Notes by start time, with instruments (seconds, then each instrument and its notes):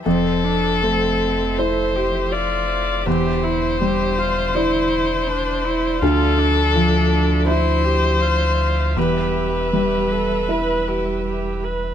0.06 sub bass F1, felt piano F2, string section F3 C5 E5, viola C4, violin A4
0.44 viola D4
0.82 felt piano A3, viola C4
1.57 felt piano E4 C5, viola A4, violin C5
1.96 viola G4
2.32 viola F4, violin D5
3.06 sub bass E1, felt piano E2, string section D3 D5, viola G4, violin C5
3.44 viola E4
3.81 felt piano G3, viola G4
4.18 viola F4
4.54 viola E4, felt piano E4 D5
5.28 viola D4
5.65 viola E4
6.01 sub bass D2, felt piano D2, string section F3 E5, viola F4, violin A4
6.38 viola D4
6.75 felt piano F3
7.47 viola E4, felt piano E4 E5, violin C5
7.84 viola G4
8.20 viola F4
8.96 sub bass E1, felt piano E2, string section G3 B4, viola G4, violin B4
9.73 felt piano G3, viola G4
10.11 viola A4
10.49 felt piano E4 E5, viola B4
10.88 viola G4
11.26 viola G4
11.64 viola B4